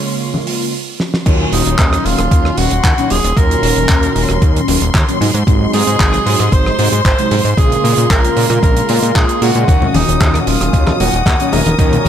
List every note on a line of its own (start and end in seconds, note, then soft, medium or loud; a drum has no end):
0.00 0.73 C#3 medium
0.00 0.74 G#3 medium
0.00 0.74 A#3 medium
0.00 0.73 C#4 loud
0.00 0.74 F4 medium
0.00 0.74 C6 medium
0.34 high conga medium
0.47 open hi-hat medium
1.00 snare soft
1.14 snare medium
1.25 1.45 D#2 loud
1.25 2.54 A#2 medium
1.25 2.55 D#3 medium
1.25 2.55 F#3 medium
1.25 2.55 C#4 loud
1.25 9.69 C6 medium
1.25 kick loud
1.25 closed hi-hat medium
1.25 crash loud
1.53 1.62 D#1 medium
1.53 2.07 D#4 loud
1.53 open hi-hat loud
1.66 1.76 D#1 medium
1.66 closed hi-hat medium
1.79 1.98 D#2 medium
1.79 kick loud
1.79 clap loud
1.79 closed hi-hat medium
1.93 cross-stick medium
1.93 closed hi-hat medium
2.06 2.15 D#1 medium
2.06 2.60 F4 medium
2.06 open hi-hat loud
2.19 2.28 D#1 medium
2.19 cross-stick medium
2.19 closed hi-hat medium
2.31 2.51 D#2 medium
2.31 kick loud
2.31 closed hi-hat medium
2.45 cross-stick medium
2.57 2.68 D#1 loud
2.57 2.70 A#2 medium
2.57 2.70 D#3 medium
2.57 2.70 F#3 medium
2.57 2.70 C#4 loud
2.57 3.12 F#4 loud
2.57 open hi-hat loud
2.71 2.81 D#1 medium
2.71 closed hi-hat medium
2.84 2.94 D#2 medium
2.84 kick loud
2.84 clap loud
2.84 closed hi-hat medium
2.97 3.07 A#2 medium
2.97 3.07 D#3 medium
2.97 3.08 F#3 medium
2.97 3.08 C#4 loud
2.97 closed hi-hat soft
3.10 3.20 D#1 medium
3.10 3.18 A#2 medium
3.10 3.18 D#3 medium
3.10 3.18 F#3 medium
3.10 3.18 C#4 loud
3.10 3.39 G#4 loud
3.10 open hi-hat loud
3.24 3.33 D#1 medium
3.24 closed hi-hat medium
3.36 3.56 D#2 loud
3.36 4.65 A#2 medium
3.36 4.65 D#3 medium
3.36 4.66 F#3 medium
3.36 4.66 C#4 loud
3.36 4.95 A#4 loud
3.36 kick loud
3.36 closed hi-hat medium
3.51 closed hi-hat medium
3.63 3.73 D#1 medium
3.63 open hi-hat loud
3.76 3.86 D#1 medium
3.76 closed hi-hat medium
3.89 4.09 D#2 medium
3.89 kick loud
3.89 clap loud
3.89 closed hi-hat medium
4.03 closed hi-hat medium
4.16 4.26 D#1 medium
4.16 open hi-hat loud
4.29 4.39 D#1 medium
4.29 cross-stick medium
4.29 closed hi-hat medium
4.42 4.61 D#2 medium
4.42 kick loud
4.42 closed hi-hat medium
4.56 closed hi-hat medium
4.68 4.78 D#1 loud
4.68 4.80 A#2 medium
4.68 4.80 D#3 medium
4.68 4.81 F#3 medium
4.68 4.81 C#4 loud
4.68 open hi-hat loud
4.82 4.91 D#1 medium
4.82 closed hi-hat medium
4.94 5.04 D#2 medium
4.94 kick loud
4.94 clap loud
4.94 closed hi-hat medium
5.08 5.18 A#2 medium
5.08 5.18 D#3 medium
5.08 5.18 F#3 medium
5.08 5.18 C#4 loud
5.08 closed hi-hat medium
5.20 5.31 G#2 medium
5.20 5.28 C3 medium
5.20 5.28 F#3 medium
5.20 5.28 G#3 medium
5.20 5.29 D#4 loud
5.20 open hi-hat loud
5.34 5.44 G#2 medium
5.34 closed hi-hat medium
5.46 5.67 G#1 loud
5.46 6.75 C3 medium
5.46 6.76 F#3 medium
5.46 6.76 G#3 medium
5.46 6.76 D#4 loud
5.46 kick loud
5.46 closed hi-hat medium
5.73 5.84 G#2 medium
5.73 6.54 G#4 loud
5.73 open hi-hat loud
5.87 5.96 G#2 medium
5.87 closed hi-hat medium
6.00 6.19 G#1 medium
6.00 kick loud
6.00 clap loud
6.00 closed hi-hat medium
6.13 cross-stick medium
6.13 closed hi-hat soft
6.26 6.36 G#2 medium
6.26 open hi-hat loud
6.40 6.49 G#2 medium
6.40 cross-stick medium
6.40 closed hi-hat medium
6.52 6.72 G#1 medium
6.52 7.05 C5 loud
6.52 kick loud
6.52 closed hi-hat medium
6.66 cross-stick medium
6.79 6.89 G#2 loud
6.79 6.91 C3 medium
6.79 6.91 F#3 medium
6.79 6.91 G#3 medium
6.79 6.91 D#4 loud
6.79 open hi-hat loud
6.92 7.02 G#2 medium
6.92 closed hi-hat medium
7.05 7.15 G#1 medium
7.05 7.60 C5 loud
7.05 kick loud
7.05 clap loud
7.05 closed hi-hat medium
7.18 7.28 C3 medium
7.18 7.28 F#3 medium
7.18 7.29 G#3 medium
7.18 7.29 D#4 loud
7.18 closed hi-hat medium
7.31 7.41 G#2 medium
7.31 7.39 C3 loud
7.31 7.39 F#3 medium
7.31 7.39 G#3 medium
7.31 7.40 D#4 loud
7.31 open hi-hat loud
7.45 7.54 G#2 medium
7.45 closed hi-hat medium
7.57 7.77 A#1 loud
7.57 8.86 C#3 medium
7.57 8.86 G#3 medium
7.57 8.87 A#3 medium
7.57 8.87 F4 loud
7.57 8.10 G#4 loud
7.57 kick loud
7.57 closed hi-hat medium
7.72 closed hi-hat medium
7.84 7.94 A#2 medium
7.84 open hi-hat loud
7.98 8.07 A#2 medium
7.98 closed hi-hat medium
8.10 8.30 A#1 medium
8.10 8.59 A#4 loud
8.10 kick loud
8.10 clap loud
8.10 closed hi-hat medium
8.25 closed hi-hat medium
8.37 8.47 A#2 medium
8.37 open hi-hat loud
8.50 8.59 A#2 medium
8.50 cross-stick medium
8.50 closed hi-hat medium
8.63 8.82 A#1 medium
8.63 9.18 A#4 loud
8.63 kick loud
8.63 closed hi-hat medium
8.77 closed hi-hat medium
8.89 8.99 A#2 loud
8.89 9.39 C#3 medium
8.89 9.39 G#3 medium
8.89 9.39 A#3 medium
8.89 9.39 F4 medium
8.89 open hi-hat loud
9.03 9.12 A#2 medium
9.03 closed hi-hat medium
9.15 9.25 A#1 loud
9.15 9.44 G#4 loud
9.15 kick loud
9.15 clap loud
9.15 closed hi-hat medium
9.29 closed hi-hat medium
9.41 9.52 A#2 medium
9.41 9.65 C#3 medium
9.41 9.65 G#3 medium
9.41 9.65 A#3 medium
9.41 9.66 F4 medium
9.41 9.97 F#4 loud
9.41 open hi-hat loud
9.55 9.65 A#2 medium
9.55 closed hi-hat medium
9.67 9.88 D#2 loud
9.67 10.96 A#2 medium
9.67 10.97 D#3 medium
9.67 10.97 F#3 medium
9.67 10.97 C#4 loud
9.67 12.09 D#6 medium
9.67 kick loud
9.67 closed hi-hat medium
9.82 low conga medium
9.94 10.04 D#1 medium
9.94 10.42 D#4 loud
9.94 open hi-hat loud
9.94 high bongo soft
9.94 high conga loud
10.09 10.18 D#1 medium
10.09 closed hi-hat medium
10.20 10.40 D#2 medium
10.20 kick loud
10.20 clap loud
10.20 closed hi-hat medium
10.20 high bongo medium
10.34 cross-stick medium
10.34 closed hi-hat soft
10.34 high conga medium
10.40 10.49 F#4 medium
10.47 10.57 D#1 medium
10.47 11.00 F4 medium
10.47 open hi-hat loud
10.61 10.70 D#1 medium
10.61 cross-stick medium
10.61 closed hi-hat medium
10.61 high bongo soft
10.73 10.93 D#2 medium
10.73 kick loud
10.73 closed hi-hat medium
10.87 cross-stick medium
10.87 high bongo medium
10.87 high conga medium
11.00 11.10 D#1 loud
11.00 11.12 A#2 medium
11.00 11.12 D#3 medium
11.00 11.12 F#3 medium
11.00 11.12 C#4 loud
11.00 11.54 F#4 loud
11.00 open hi-hat loud
11.14 11.23 D#1 medium
11.14 closed hi-hat medium
11.26 11.36 D#2 loud
11.26 kick loud
11.26 clap loud
11.26 closed hi-hat medium
11.26 high bongo medium
11.26 high conga medium
11.40 11.50 A#2 medium
11.40 11.50 D#3 medium
11.40 11.50 F#3 medium
11.40 11.50 C#4 loud
11.40 closed hi-hat soft
11.52 11.62 D#1 medium
11.52 11.60 A#2 medium
11.52 11.60 D#3 medium
11.52 11.60 F#3 medium
11.52 11.60 C#4 loud
11.52 11.79 A#4 loud
11.52 open hi-hat loud
11.52 high bongo medium
11.52 low conga medium
11.66 11.75 D#1 medium
11.66 closed hi-hat medium
11.66 high conga loud
11.78 11.98 D#2 loud
11.78 12.09 A#2 loud
11.78 12.09 D#3 medium
11.78 12.09 F#3 medium
11.78 12.09 C#4 loud
11.78 12.09 A#4 loud
11.78 kick loud
11.78 closed hi-hat medium
11.93 closed hi-hat medium
11.93 high bongo medium
11.93 low conga medium
12.05 12.09 D#1 medium
12.05 high conga loud